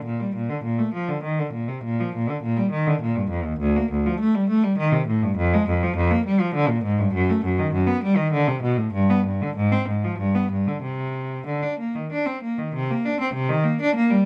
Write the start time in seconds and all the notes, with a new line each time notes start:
0.04 A#2
0.20 G3
0.35 A#2
0.50 D3
0.63 A#2
0.79 A3
0.94 F3
1.08 D3
1.23 D#3
1.39 D3
1.53 A#2
1.69 C3
1.83 A#2
2.00 F3
2.15 A#2
2.30 D3
2.42 A#2
2.57 G3
2.71 D#3
2.87 D3
3.01 A#2
3.15 G2
3.30 F2
3.45 D#2
3.59 D2
3.76 A#3
3.91 D2
4.06 F3
4.20 A3
4.35 G3
4.49 A3
4.63 G3
4.78 D#3
4.92 C3
5.07 A2
5.22 G2
5.37 F2
5.54 G#3
5.68 F2
5.83 F3
5.96 F2
6.11 A#3
6.25 G3
6.40 F3
6.54 D3
6.69 A#2
6.84 G#2
6.99 G2
7.13 F#2
7.30 A3
7.45 F#2
7.59 D#3
7.73 F#2
7.87 B3
8.03 G3
8.17 D#3
8.32 D3
8.48 C3
8.62 B2
8.77 A2
8.93 G2
9.10 B3
9.26 G2
9.42 D3
9.56 G#2
9.72 C4
9.88 G#2
10.04 F3
10.18 G2
10.35 B3
10.52 G2
10.68 D3
10.82 C3
11.46 D3
11.62 D4
11.79 A#3
11.95 D#3
12.12 D4
12.26 C4
12.42 A#3
12.58 D#3
12.74 C3
12.91 A#3
13.05 D4
13.20 C4
13.34 C3
13.49 D#3
13.64 A#3
13.81 D4
13.95 A#3
14.11 G3